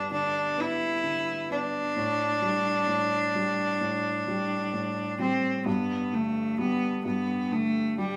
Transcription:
0.00 1.99 G2 medium
0.00 0.11 D3 soft
0.00 0.56 B3 soft
0.11 1.02 D3 soft
0.11 0.61 D4 medium
0.57 1.48 B3 soft
0.57 1.51 E4 medium
1.04 1.94 D3 soft
1.50 1.95 B3 soft
1.50 5.16 D4 medium
1.97 2.86 A2 medium
2.42 3.34 G3 soft
2.88 3.80 A2 soft
3.35 4.26 G3 soft
3.81 4.72 A2 soft
4.28 5.18 G3 soft
4.73 5.63 A2 soft
5.19 5.65 G3 soft
5.19 5.64 C4 medium
5.66 7.04 G2 medium
5.66 6.15 B3 medium
6.13 7.51 D3 soft
6.13 6.59 A3 medium
6.59 7.97 G3 soft
6.59 7.02 B3 medium
7.05 8.16 G2 soft
7.05 7.53 B3 medium
7.52 8.16 D3 soft
7.52 7.98 A3 medium
7.98 8.16 G3 medium
7.98 8.16 G3 soft

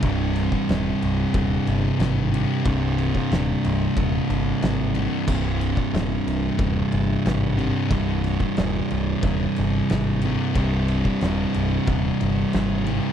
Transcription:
0.00 0.47 C1 loud
0.00 2.34 C2 medium
0.00 2.30 G2 loud
0.00 13.13 C3 medium
0.00 13.13 G3 medium
0.00 13.13 D4 loud
0.00 kick loud
0.00 ride loud
0.05 2.31 C3 loud
0.36 snare soft
0.36 ride medium
0.52 kick medium
0.69 0.91 D#1 medium
0.69 snare loud
0.69 ride loud
1.02 1.24 C1 medium
1.02 ride medium
1.34 1.57 D#1 medium
1.34 kick loud
1.34 ride loud
1.67 1.89 G1 medium
1.67 ride medium
1.99 2.43 G#1 loud
1.99 snare loud
1.99 ride loud
2.31 2.63 C2 medium
2.31 2.63 G2 medium
2.31 2.67 C3 medium
2.31 ride medium
2.63 3.10 C1 medium
2.63 4.97 C2 loud
2.63 4.93 G2 loud
2.63 4.94 C3 loud
2.63 kick loud
2.63 ride loud
2.98 ride medium
3.15 kick medium
3.31 3.53 D#1 loud
3.31 snare loud
3.31 ride loud
3.64 3.87 C1 loud
3.64 ride medium
3.96 4.18 D#1 medium
3.96 kick loud
3.96 ride loud
4.29 4.51 G1 medium
4.29 ride medium
4.62 5.07 G#1 loud
4.62 snare loud
4.62 ride loud
4.94 5.26 C2 medium
4.94 5.26 G2 medium
4.94 5.30 C3 medium
4.94 ride medium
5.26 5.72 C1 loud
5.26 7.60 C2 medium
5.26 7.57 G2 loud
5.26 7.56 C3 loud
5.26 kick loud
5.26 crash loud
5.61 ride medium
5.77 kick medium
5.93 6.16 D#1 loud
5.93 snare loud
5.93 ride loud
6.26 6.48 C1 medium
6.26 ride medium
6.59 6.81 D#1 medium
6.59 kick loud
6.59 ride loud
6.92 7.15 G1 medium
6.92 ride medium
7.26 7.70 G#1 loud
7.26 snare loud
7.26 ride loud
7.57 7.89 C2 medium
7.57 7.90 G2 medium
7.57 7.92 C3 medium
7.57 ride medium
7.90 8.35 C1 loud
7.90 10.25 C2 loud
7.90 10.21 G2 loud
7.90 10.22 C3 loud
7.90 kick loud
7.90 ride loud
8.24 snare soft
8.24 ride medium
8.40 kick medium
8.57 8.80 D#1 loud
8.57 snare loud
8.57 ride loud
8.90 9.13 C1 medium
8.90 ride medium
9.23 9.45 D#1 loud
9.23 kick loud
9.23 ride loud
9.56 9.80 G1 medium
9.56 ride medium
9.89 10.35 G#1 loud
9.89 snare loud
9.89 ride loud
10.21 10.54 G2 medium
10.21 10.58 C3 medium
10.21 ride medium
10.26 10.54 C2 medium
10.55 11.00 C1 loud
10.55 12.89 C2 loud
10.55 12.85 G2 loud
10.55 12.85 C3 loud
10.55 kick loud
10.55 ride loud
10.88 ride medium
11.05 kick medium
11.21 11.44 D#1 loud
11.21 snare loud
11.21 ride loud
11.54 11.77 C1 medium
11.54 ride medium
11.87 12.10 D#1 medium
11.87 kick loud
11.87 ride loud
12.20 12.43 G1 medium
12.20 ride medium
12.53 12.98 G#1 loud
12.53 snare loud
12.53 ride loud
12.86 13.13 C2 medium
12.86 13.13 G2 medium
12.86 13.13 C3 medium
12.86 ride medium

